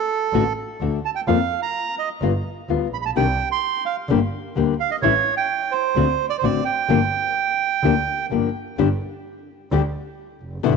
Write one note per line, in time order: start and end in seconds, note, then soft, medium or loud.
0.00 0.53 A4 medium
0.33 0.53 A1 medium
0.33 0.42 D3 medium
0.33 0.43 A3 medium
0.33 0.43 D4 medium
0.33 0.43 F#4 medium
0.80 1.00 D2 soft
0.80 0.98 D3 soft
0.80 0.98 A3 soft
0.80 0.98 D4 medium
0.80 0.98 F#4 medium
1.05 1.10 A5 medium
1.15 1.21 G5 medium
1.27 1.47 F2 medium
1.27 1.37 F3 medium
1.27 1.37 A#3 medium
1.27 1.37 C4 medium
1.27 1.37 F4 medium
1.27 1.61 F5 medium
1.62 1.96 A#5 medium
1.99 2.09 D#5 medium
2.22 2.41 G1 medium
2.22 2.31 G3 medium
2.22 2.31 B3 medium
2.22 2.32 F4 medium
2.69 2.89 D2 soft
2.69 2.86 G3 medium
2.69 2.86 B3 medium
2.69 2.86 F4 medium
2.92 3.15 A#1 soft
2.92 2.97 B5 medium
3.02 3.11 A5 medium
3.02 3.05 B5 soft
3.15 3.35 C2 medium
3.15 3.25 C3 medium
3.15 3.25 D#3 medium
3.15 3.25 G3 medium
3.15 3.25 D4 medium
3.15 3.25 G4 medium
3.15 3.49 G5 medium
3.52 3.84 C6 medium
3.86 3.96 F5 medium
4.09 4.29 G1 medium
4.09 4.19 D3 medium
4.09 4.19 G3 medium
4.09 4.19 A#3 medium
4.09 4.19 D4 medium
4.09 4.19 G4 medium
4.56 4.75 D2 soft
4.56 4.73 D3 soft
4.56 4.73 G3 medium
4.56 4.73 A#3 medium
4.56 4.73 D4 medium
4.56 4.74 G4 medium
4.80 4.90 F5 medium
4.91 4.96 D#5 medium
5.02 5.22 A1 medium
5.02 5.12 E3 medium
5.02 5.12 G3 medium
5.02 5.12 C#4 medium
5.02 5.12 E4 medium
5.02 5.35 C#5 medium
5.37 5.73 G5 medium
5.71 6.26 C5 medium
5.95 6.15 D2 medium
5.95 6.05 D3 medium
5.95 6.05 A3 medium
5.95 6.05 C4 medium
5.95 6.05 F#4 medium
6.30 6.37 D5 medium
6.38 6.45 C5 medium
6.43 6.62 A1 soft
6.43 6.60 D3 medium
6.43 6.60 A3 medium
6.43 6.60 C4 medium
6.43 6.60 F#4 medium
6.43 6.64 D5 medium
6.65 8.26 G5 medium
6.89 7.09 G1 medium
6.89 6.98 D3 medium
6.89 6.98 F3 medium
6.89 6.98 A#3 medium
6.89 6.99 D4 medium
6.89 6.99 G4 medium
7.83 8.03 D2 medium
7.83 7.93 D3 medium
7.83 7.93 F3 medium
7.83 7.93 A#3 medium
7.83 7.93 D4 medium
7.83 7.93 G4 medium
8.31 8.51 G1 soft
8.31 8.48 D3 soft
8.31 8.48 F3 soft
8.31 8.48 A#3 medium
8.31 8.49 D4 medium
8.31 8.48 G4 medium
8.78 8.98 G1 medium
8.78 8.87 D3 medium
8.78 8.87 G3 medium
8.78 8.87 D4 medium
8.78 8.88 G4 medium
9.72 9.91 D2 medium
9.72 9.81 D3 medium
9.72 9.81 G3 medium
9.72 9.81 D4 medium
9.72 9.81 G4 medium
10.41 10.63 F1 medium
10.63 10.77 G1 medium
10.63 10.73 B2 medium
10.63 10.73 D3 medium
10.63 10.73 G3 medium
10.63 10.73 B3 medium
10.63 10.73 E4 medium